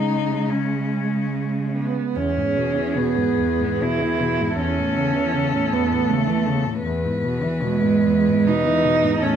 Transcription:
cello
Already playing: C#3 G#3 D#4
0.49 C#4
1.76 B3
2.16 E2 C#4 G#4
2.36 G#2
2.56 B2
2.76 E3
2.96 B2 B3
3.17 G#2
3.38 E2
3.60 G#2
3.81 B2 E4
4.02 E3
4.21 B2
4.41 G#2
4.58 E2 C#4 A4
4.78 A2
4.96 C#3
5.15 E3
5.34 C#3
5.54 A2
5.72 E2 B3
5.91 A2
6.09 C#3 A3
6.28 E3
6.47 C#3
6.66 A2
6.84 E2 B4
7.05 G#2
7.24 B2
7.43 E3
7.62 B2 G#3
7.83 G#2
8.05 E2
8.27 G#2
8.47 B2 D#4
8.66 E3
8.85 B2
9.04 G#2
9.22 A2 C#4 A4

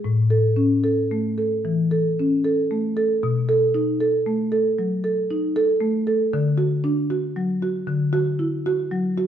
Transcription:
marimba
0.04 A2
0.30 A4
0.56 C#4
0.84 A4
1.11 A3
1.38 A4
1.65 E3
1.91 A4
2.20 C#4
2.44 A4
2.71 A3
2.97 A4
3.23 B2
3.49 A4
3.74 D#4
4.00 A4
4.26 A3
4.52 A4
4.79 F#3
5.04 A4
5.31 D#4
5.56 A4
5.81 A3
6.07 A4
6.33 D3
6.58 F#4
6.84 D4
7.10 F#4
7.36 F#3
7.62 F#4
7.87 D3
8.13 F#4
8.39 E4
8.66 F#4
8.91 F#3
9.18 F#4

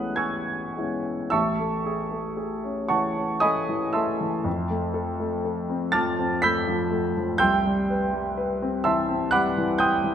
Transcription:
grand piano
Already playing: G#3 B3 C#4 E4 A4 F#5 B5 D#6 F#6
0.16 G#5 C#6 E6 G#6
0.76 G#3 B3 C#4 E4
1.30 A1 E5 A5 C#6 E6
1.60 A3
1.86 G#4
2.12 A3
2.37 G#4
2.64 C#4
2.88 E3 C#5 F#5 A5 C#6
3.17 C#4
3.40 A3 D#5 G#5 B5 D#6
3.69 E3
3.93 A3 E5 A5 C6 E6
4.21 E3
4.44 F2
4.70 A3
4.94 A4
5.20 A3
5.45 A4
5.70 C4
5.92 F3 A5 D6 F6 A6
6.19 C4
6.42 A3 B5 E6 G6 B6
6.67 F3
6.92 A3
7.17 F3
7.38 C2 G5 C6 E6 G6
7.65 G3
7.90 B4
8.13 G3
8.37 B4
8.62 C4
8.84 E3 E5 A5 C6 E6
9.09 C4
9.31 G3 F#5 B5 D6 F#6
9.58 E3
9.78 G3 G5 C6 D#6 G6
10.04 E3

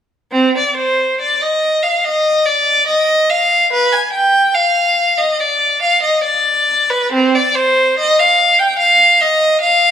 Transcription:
violin
0.32 C4
0.58 D5
0.77 C5
1.21 D5
1.41 D#5
1.83 F5
2.05 D#5
2.46 D5
2.87 D#5
3.30 F5
3.73 B4
3.92 G#5
4.13 G5
4.55 F5
5.18 D#5
5.40 D5
5.82 F5
6.03 D#5
6.24 D5
6.90 B4
7.12 C4
7.35 D5
7.56 C5
7.99 D#5
8.19 F5
8.59 G5
8.79 F5
9.21 D#5
9.61 F5

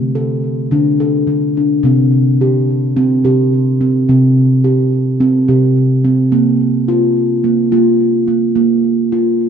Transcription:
steel tongue drum
Already playing: D3 A3
0.15 A4
0.71 D3 D4
1.00 A4
1.27 D3
1.57 D4
1.83 C3 C4
2.41 G4
2.97 C4
3.24 C3 G4
3.81 C4
4.09 C3 C4
4.64 G4
5.20 C4
5.48 C3 G4
6.04 C4
6.32 A#3
6.88 F4
7.44 A#3
7.72 A#3 F4
8.28 A#3
8.56 A#3
9.12 F4

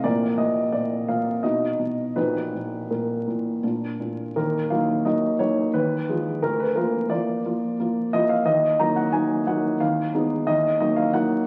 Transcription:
grand piano
0.04 A#1 A#2 A#3 A#4 D5
0.38 A#2 D#5
0.72 A#2 D5
1.08 A#2 F5
1.43 B2 D#4 F#4 D#5
1.79 B2
2.16 A#1 A#2 D#4 F#4 B4
2.54 A#2
2.91 A#2 A#4
3.27 A#2
3.63 A#2 D4 F4
4.00 A#2
4.36 D#2 A#4
4.70 F#3 A#3 D#4 F5
5.05 F#3 A#3 D#4 D#5
5.39 F#3 A#3 D#4 C#5
5.74 D#2 B4
6.09 F3 G#3 F4
6.43 D2 A#4
6.60 B4
6.76 F3 A#3 F4 A#4
7.10 F3 A#3 F4 D5
7.45 F3 A#3 F4
7.80 F3 A#3 F4
8.13 F3 A#3 F4 D#5
8.29 F5
8.46 D#2 D#5
8.79 F#3 A#3 D#4 A#5
8.96 F#5
9.12 F#3 A#3 D#4 G#5
9.47 F#3 A#3 D#4 F#5
9.80 D#2 F5
10.14 G#3 B3 D#4
10.47 D#2 D#5
10.80 F#3 A#3 D#4 D#5
10.96 F5
11.13 F#3 A#3 D#4 F#5

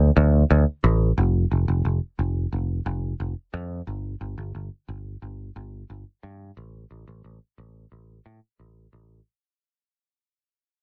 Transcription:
picked electric bass
0.16 D2
0.50 D2
0.84 A1
1.18 F1
1.51 F1
1.68 F1
1.85 F1
2.19 F1
2.52 F1
2.86 F1
3.20 F1
3.54 F2
3.87 G1
4.21 G1
4.38 G1
4.55 G1
4.88 G1
5.22 G1
5.56 G1
5.90 G1
6.23 G2
6.57 A1
6.91 A1
7.08 A1
7.24 A1
7.58 A1
7.92 A1
8.26 A2
8.59 A1
8.93 A1

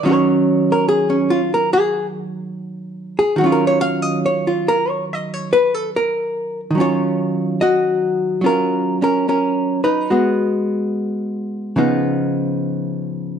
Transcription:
hollow-body jazz guitar
0.03 D#3 F#3 C#4 F4
0.12 C#5
0.72 A#4
0.89 G#4
1.10 C#4
1.30 F4
1.54 A#4
1.73 G#4
3.19 G#4
3.36 D#3 F#4
3.41 F#3 C#4
3.46 F4
3.52 A#4
3.67 C#5
3.81 F5
4.02 D#5
4.26 C#5
4.47 F4
4.68 A#4
4.89 C#5
5.13 D#5
5.34 C#5
5.53 B4
5.74 A4
5.96 A#4
6.71 D#3
6.75 F#3 C#4
6.80 F4 C#5
7.61 F#4 D#5
8.41 F#3 C#4 F4
8.46 A#4
9.02 C#4 A#4
9.29 C#4 A#4
9.84 D#4 B4
10.10 G#3 B3 F#4
11.76 C#3 F3 B3 D#4

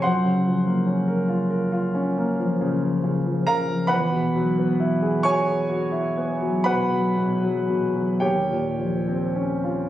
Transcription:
grand piano
0.02 F#2 C5 F#5 C6
0.25 C#3
0.47 F3
0.67 A#3
0.87 C#4
1.08 A#4
1.28 F4
1.50 A#4
1.72 F4
1.95 C#4
2.18 A#3
2.39 F3
2.61 C#3
2.83 F3
3.04 C#3
3.26 F3
3.47 C#3 A#4 F5 A#5
3.68 F3
3.87 E2 B4 F#5 B5
4.12 B2
4.36 F#3
4.59 B3
4.80 E4
5.02 G#4
5.23 F#4 C#5 G#5 C#6
5.47 G#4
5.69 F#4
5.92 E4
6.17 B3
6.42 F#3
6.64 B2 B4 F#5 B5
6.92 F#3
7.17 B2
7.43 F#3
7.69 B2
7.94 F#3
8.20 D#2 G4 C#5 G5
8.50 A#2
8.79 F3
9.08 C4
9.36 C#4
9.64 F4

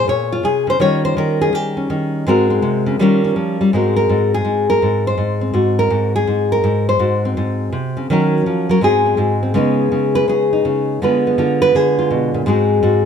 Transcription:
nylon-string guitar
0.08 A#2 C#5
0.32 F4
0.43 C3 G#4
0.67 C#3 C5
0.80 D#3 G3 C#4 F4 C#5
1.05 C5
1.17 D#3 A#4
1.41 G#4
1.53 D#3 G4
1.77 C#4
1.90 D#3
2.27 G#2 G#3 C4 F#4 A#4
2.50 C4
2.62 C3
2.86 C#3
2.99 D#3 G3 C#4 F4 A#4
3.24 C#4
3.36 F3
3.61 G3
3.73 G#2 G#3 C4 F#4 A#4
3.96 A#4
4.09 G#2
4.34 G#4
4.45 G#2
4.70 A#4
4.82 G#2
5.07 C5
5.18 G#2
5.41 C4
5.54 G#2 F#4
5.79 A#4
5.90 G#2
6.16 G#4
6.27 G#2
6.52 A#4
6.64 G#2
6.89 C5
6.99 G#2 F#4
7.25 C4
7.37 G#2
7.72 C3
7.97 C#3
8.10 D#3 F#3 C#4 F#4 A#4
8.46 F3
8.69 F#3 A#4
8.81 G#2 G#3 C4 F#4 G#4
9.06 C4
9.17 G#2 F#4
9.43 C4
9.54 C#3 G#3 B3 D#4 B4
9.92 C#3
10.15 B4
10.28 C#3 G#4
10.53 D#4
10.65 C#3
11.02 D3 G#3 B3 F4 B4
11.27 B3
11.38 D3 F4
11.62 B4
11.75 D3 G#4
11.99 F4
12.11 B2
12.34 A#2
12.46 G#2 G#3 C4 F#4 G#4
12.83 G#2 F#4

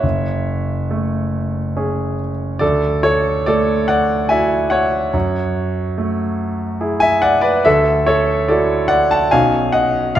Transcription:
grand piano
Already playing: C#5 E5
0.03 F#1
0.91 A3
1.77 C#4 G#4
2.59 D2 A4 D5
3.03 A4 C#5
3.46 A3 A4 D5
3.88 D5 F#5
4.29 E4 F#4 E5 G#5
4.70 C#5 F#5
5.13 F#2
5.98 A3
6.81 E4 G#4
7.00 E5 G#5
7.22 D5 F#5
7.41 B4 D5
7.65 D2 A4 E5
8.06 A4 C#5
8.48 E4 F#4 A4 D5
8.88 D5 F#5
9.11 F#5 A5
9.31 B1 C#4 D#4 F#4 F5 G#5
9.72 D#5 F#5
10.15 F5

